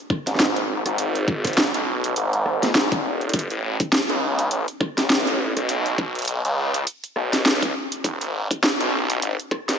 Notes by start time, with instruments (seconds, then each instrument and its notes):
0.10 kick, cross-stick
0.27 detuned saw bass G#1, snare, closed hi-hat
0.35 snare
0.40 snare, closed hi-hat
0.46 snare
0.56 closed hi-hat
0.86 detuned saw bass G#1, cross-stick, closed hi-hat
0.98 closed hi-hat
1.15 closed hi-hat
1.28 kick
1.45 kick, cross-stick, closed hi-hat
1.47 closed hi-hat
1.53 closed hi-hat
1.58 snare, closed hi-hat
1.63 closed hi-hat
1.67 closed hi-hat
1.74 detuned saw bass B1, closed hi-hat
2.04 closed hi-hat
2.16 detuned saw bass G#1, closed hi-hat
2.33 closed hi-hat
2.46 cross-stick
2.63 snare, closed hi-hat
2.75 detuned saw bass G#1, snare, closed hi-hat
2.92 detuned saw bass E1, kick, closed hi-hat
3.21 closed hi-hat
3.29 closed hi-hat
3.33 detuned saw bass F#1, kick, closed hi-hat
3.39 closed hi-hat
3.50 detuned saw bass A1, closed hi-hat
3.80 kick, closed hi-hat
3.92 snare, closed hi-hat
4.10 detuned saw bass C#2, closed hi-hat
4.39 closed hi-hat
4.51 detuned saw bass A1, closed hi-hat
4.68 closed hi-hat
4.80 kick, cross-stick
4.98 detuned saw bass A1, snare, closed hi-hat
5.10 snare, closed hi-hat
5.27 closed hi-hat
5.57 detuned saw bass B1, cross-stick, closed hi-hat
5.69 closed hi-hat
5.86 closed hi-hat
5.98 kick
6.15 closed hi-hat
6.19 closed hi-hat
6.22 closed hi-hat
6.25 closed hi-hat
6.28 closed hi-hat
6.45 detuned saw bass C#2, closed hi-hat
6.74 closed hi-hat
6.87 closed hi-hat
7.04 closed hi-hat
7.16 detuned saw bass B1, cross-stick
7.33 snare, closed hi-hat
7.45 detuned saw bass C#2, snare, closed hi-hat
7.62 kick, closed hi-hat
7.92 closed hi-hat
8.04 detuned saw bass E1, kick, closed hi-hat
8.21 detuned saw bass G#1, closed hi-hat
8.51 kick, closed hi-hat
8.63 snare, closed hi-hat
8.80 detuned saw bass B1, closed hi-hat
9.10 closed hi-hat
9.22 detuned saw bass G#1, closed hi-hat
9.40 closed hi-hat
9.51 kick, cross-stick
9.68 detuned saw bass G#1, snare, closed hi-hat